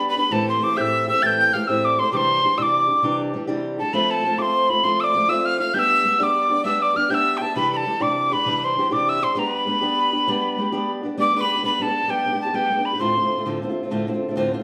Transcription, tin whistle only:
0.09 0.17 B5 loud
0.18 0.33 B5 medium
0.32 0.48 A5 loud
0.49 0.65 C6 medium
0.63 0.78 D6 loud
0.77 1.08 E6 medium
0.77 0.82 G6 medium
1.08 1.24 E6 loud
1.22 1.54 G6 loud
1.22 1.27 A6 loud
1.53 1.68 F6 medium
1.67 1.86 E6 loud
1.84 2.00 D6 loud
1.99 2.12 C6 medium
2.12 2.17 D6 loud
2.16 2.59 C6 loud
2.58 2.63 E6 medium
2.62 3.20 D6 medium
3.79 3.95 A5 medium
3.93 4.12 B5 loud
4.10 4.40 A5 medium
4.38 4.71 C6 medium
4.38 4.43 D6 medium
4.69 4.85 B5 loud
4.83 5.02 C6 loud
5.00 5.30 D6 loud
5.00 5.05 E6 medium
5.29 5.46 E6 loud
5.45 5.59 F6 loud
5.59 5.75 F6 loud
5.74 5.80 G6 loud
5.79 6.20 E6 loud
6.20 6.64 D6 loud
6.20 6.24 E6 medium
6.65 6.83 E6 loud
6.82 6.97 D6 loud
6.96 7.12 F6 medium
7.10 7.39 E6 loud
7.10 7.15 G6 loud
7.37 7.43 G5 medium
7.42 7.55 A5 medium
7.56 7.71 B5 loud
7.73 8.03 A5 medium
7.73 7.77 B5 medium
8.02 8.34 D6 medium
8.33 8.66 B5 loud
8.64 8.94 C6 medium
8.92 9.10 D6 medium
9.09 9.25 E6 loud
9.23 9.40 C6 medium
9.38 9.51 A#5 loud
9.51 10.91 B5 loud
11.20 11.36 D6 loud
11.36 11.42 D6 medium
11.41 11.64 B5 loud
11.65 11.83 B5 medium
11.82 12.11 A5 loud
12.10 12.40 G5 medium
12.41 12.56 A5 medium
12.55 12.86 G5 medium
12.85 13.02 B5 medium
13.00 13.46 C6 medium

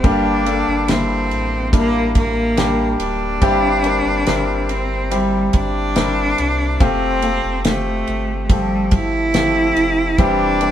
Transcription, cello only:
0.05 0.92 D4 loud
0.90 1.74 C4 loud
1.75 2.14 A#3 loud
2.16 2.96 A#3 loud
3.00 4.72 D4 loud
4.70 5.16 C4 loud
5.14 5.55 G3 medium
5.56 6.85 D4 loud
6.83 7.66 C4 loud
7.68 8.45 A3 loud
8.45 8.54 A3 medium
8.53 8.96 G3 loud
8.94 10.23 E4 loud
10.22 10.71 D4 loud

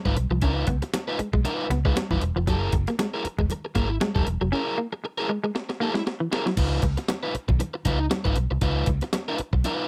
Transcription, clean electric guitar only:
0.17 muted clean electric guitar stroke soft
0.31 0.37 F3 medium
0.42 0.50 C#4 medium
0.68 0.76 B3 medium
0.82 muted clean electric guitar stroke soft
0.94 muted clean electric guitar stroke soft
1.19 1.27 G#3 medium
1.33 1.40 G#3 medium
1.45 muted clean electric guitar stroke soft
1.70 1.79 B3 medium
1.85 1.92 G#3 medium
2.11 2.17 E3 medium
2.22 muted clean electric guitar stroke soft
2.36 2.42 F3 medium
2.48 2.56 F#3 medium
2.74 muted clean electric guitar stroke soft
2.88 2.94 A#3 medium
2.99 3.07 G#3 medium
3.25 muted clean electric guitar stroke soft
3.39 3.45 G#3 medium
3.75 3.84 A#3 medium
4.02 4.10 G#3 medium
4.27 muted clean electric guitar stroke soft
4.41 4.48 F#3 medium
4.52 4.60 C#4 medium
4.78 4.86 A#3 medium
4.93 muted clean electric guitar stroke soft
5.04 muted clean electric guitar stroke soft
5.29 5.37 G#3 medium
5.44 5.50 G#3 medium
5.55 muted clean electric guitar stroke soft
5.80 5.89 A#3 medium
5.94 6.01 G#3 medium
6.20 6.27 E3 medium
6.31 muted clean electric guitar stroke soft
6.46 6.52 F#3 medium

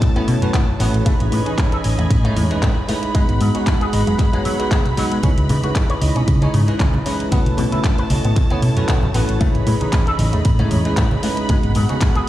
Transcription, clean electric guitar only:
0.16 0.25 B3 medium
0.28 0.35 B2 loud
0.54 0.58 B3 medium
0.80 0.84 B3 medium
1.06 1.13 A3 medium
1.32 1.39 A2 loud
1.46 1.52 D#4 medium
1.72 1.76 A4 medium
1.98 2.04 A3 medium
2.24 2.33 A3 medium
2.37 2.44 A2 medium
2.62 2.67 A3 medium
2.89 2.93 A3 medium
3.15 3.22 G#3 medium
3.41 3.48 G#2 loud
3.55 3.61 C#4 medium
3.81 3.85 G#4 medium
4.07 4.13 G#3 medium
4.33 4.42 G#3 medium
4.45 4.49 F#3 loud
4.71 4.76 G#3 medium
4.97 5.04 F#3 medium
5.12 5.17 G#3 medium
5.23 5.31 C#4 medium
5.50 5.57 C#3 medium
5.64 5.70 F#4 medium
5.90 5.93 C#5 medium
6.16 6.22 C#4 medium
6.42 6.51 C#4 medium
6.54 6.61 C#3 loud
6.80 6.84 C#4 medium
7.06 7.10 C#4 medium
7.32 7.39 B3 medium
7.58 7.65 B2 loud
7.72 7.78 E4 medium
7.99 8.02 B4 medium
8.25 8.31 B3 medium
8.51 8.60 B3 medium
8.62 8.70 B2 loud
8.89 8.93 B3 medium
9.15 9.19 B3 medium
9.41 9.48 A3 medium
9.67 9.74 A2 loud
9.81 9.87 D#4 medium
10.07 10.11 A4 medium
10.33 10.39 A3 medium
10.59 10.68 A3 medium
10.71 10.78 A2 loud
10.97 11.02 A3 medium
11.23 11.28 A3 medium
11.49 11.57 G#3 medium
11.76 11.83 G#2 loud
11.89 11.96 C#4 medium
12.16 12.19 G#4 medium

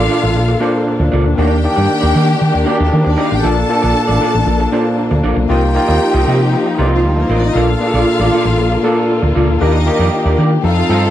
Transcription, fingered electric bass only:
0.23 0.36 A1 medium
0.36 0.54 A#1 medium
1.00 1.09 D2 medium
1.13 1.25 C#2 loud
1.25 1.34 D2 loud
1.38 1.66 D#2 loud
1.77 1.86 G2 medium
2.03 2.12 D#2 loud
2.16 2.34 D#3 loud
2.41 2.50 D#3 loud
2.55 2.63 D#2 medium
2.80 2.89 D#2 loud
2.93 3.02 D#3 loud
3.06 3.15 D#2 medium
3.32 3.41 A1 medium
3.44 3.62 A#1 loud
3.84 3.92 A#1 medium
4.09 4.18 A1 loud
4.35 4.44 A1 medium
4.47 4.65 A#1 loud
5.11 5.20 D2 loud
5.24 5.33 A#1 loud
5.36 5.46 B1 loud
5.50 5.77 C2 loud
5.89 5.97 D#2 medium
6.14 6.23 C2 loud
6.27 6.55 C3 medium
6.79 7.05 C2 medium
7.05 7.23 D2 loud
7.29 7.48 A1 loud
7.55 7.73 A#1 loud
7.94 8.03 A#1 medium
8.19 8.28 A1 loud
8.45 8.58 A1 medium
8.58 8.76 A#1 medium
9.23 9.32 D2 medium
9.36 9.48 C#2 loud
9.48 9.57 D2 loud
9.61 9.88 D#2 loud
9.99 10.08 F2 medium
10.25 10.34 D#2 loud
10.38 10.56 D#3 loud
10.64 10.82 F2 loud
10.89 11.07 G2 medium

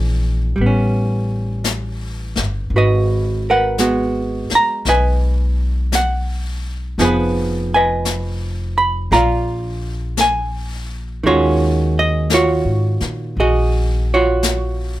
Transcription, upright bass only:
0.00 0.53 A#1 medium
0.58 2.34 A1 medium
2.37 2.68 G1 medium
2.70 4.47 G#1 medium
4.52 muted upright bass stroke soft
4.85 6.94 B1 medium
6.98 9.07 F1 medium
9.11 11.20 A#1 medium
11.24 12.61 D#2 medium
12.65 12.98 G#2 medium
13.01 13.34 A#2 medium
13.37 15.00 A#1 medium

